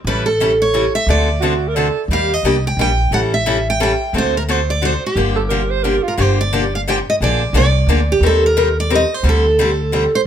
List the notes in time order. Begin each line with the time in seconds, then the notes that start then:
0.04 A1 E3 G3 C#4 E4 A4 B4
0.26 A4
0.40 E3 G3 C#4 E4 A4
0.62 C#5
0.74 E3 G3 C#4 E4 A4
0.95 E5
1.07 D2 D3 A3 C4 F#4 A4 D5
1.40 D3 A3 C4 F#4 A4
1.68 A#4
1.76 D3 A3 C4 F#4 A4
2.08 D#2 D#3 G3 A#3 D4 G4
2.13 F5
2.34 D#5
2.43 C2 D#3 G3 A#3 D4 G4
2.67 G5
2.77 A#1 D#3 G3 A#3 D4 G4
2.81 G5
3.11 A1 E3 G3 C#4 E4 A4 F#5
3.34 E5
3.46 E3 G3 C#4 E4 A4
3.70 G5
3.80 E3 G3 C#4 E4 A4 G5
4.13 D2 D3 A3 C4 F#4 A4
4.18 C5
4.37 A#4
4.48 D3 A3 C4 F#4 A4 C5
4.70 D5
4.82 D3 A3 C4 F#4 A4 C5
5.06 G4
5.16 G1 D3 F3 A#3 D4 G4
5.36 A4
5.49 D3 F3 A#3 D4 G4 A#4
5.70 C5
5.83 D3 F3 A#3 D4 G4 A#4
6.03 F4
6.08 A#4
6.18 G1 D3 F3 A#3 D4 G4 C5
6.41 D5
6.53 D3 F3 A#3 D4 G4
6.75 F5
6.87 D3 F3 A#3 D4 G4 G5
7.10 D#5
7.21 A#1 D3 F3 A#3 D4 G#4 D5
7.53 C2 D3 F3 A#3 D4 G#4
7.57 D5
7.87 D2 D3 F3 A#3 D4 G#4
8.12 G4
8.20 D#2 D#3 G3 C4 G4 A#4
8.26 A4
8.46 A#4
8.57 D#3 G3 C4 G4 A#4
8.80 D5
8.90 D#3 G3 C4 G4 A#4
8.95 D#5
9.14 C5
9.23 D2 D3 G3 C4 D4 G4
9.29 A4
9.59 D3 G3 C4 D4 G4 A4
9.92 D3 G3 C4 D4 G4
10.15 C5